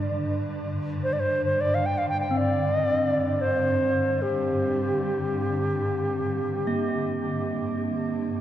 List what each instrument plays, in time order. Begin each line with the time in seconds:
Already playing: synth drone G2 D3, singing bowl D4
1.04 alto flute C5
1.13 alto flute D5
1.20 alto flute C5
1.45 alto flute C5
1.61 alto flute D5
1.75 alto flute F5
1.86 alto flute G5
1.98 alto flute F5
2.09 alto flute G5
2.21 alto flute G5
2.31 singing bowl C4
2.37 alto flute D5
3.41 alto flute C5
4.22 alto flute G4
6.67 singing bowl A#3